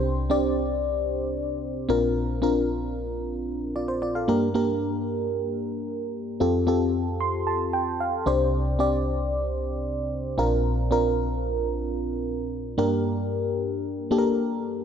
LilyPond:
<<
  \new Staff \with { instrumentName = "FM electric piano" } { \time 4/4 \key g \minor \tempo 4 = 113 << { r1 | r2. <f' d''>16 c''16 <f' d''>16 <a' f''>16~ | <a' f''>16 r2. r8. | r4. c'''8 a''8 g''8 f''8 d''8 |
r1 | r1 | r1 | } \\ { <c' d' g' c''>8 <c' d' g' d''>4. r4. <c' d' f' bes'>8~ | <c' d' f' bes'>8 <c' d' f' bes'>4. r2 | <bes d' g' bes'>8 <bes d' g' bes'>4. r2 | <c' f' g' a'>8 <c' f' g' a'>4. r4. <c' d' g' c''>8~ |
<c' d' g' c''>8 <c' d' g' d''>4. r4. <c' d' f' bes'>8~ | <c' d' f' bes'>8 <c' d' f' bes'>4. r2 | <bes d' g' bes'>4. r4 <bes d' g' a' bes'>4 r8 | } >> }
  \new Staff \with { instrumentName = "FM electric piano" } { \clef bass \time 4/4 \key g \minor <c, c>2.~ <c, c>8 <bes,, bes,>8~ | <bes,, bes,>2.~ <bes,, bes,>8 r8 | g,1 | f,2.~ f,8 <c, c>8~ |
<c, c>2.~ <c, c>8 <bes,, bes,>8~ | <bes,, bes,>2.~ <bes,, bes,>8 r8 | g,1 | }
>>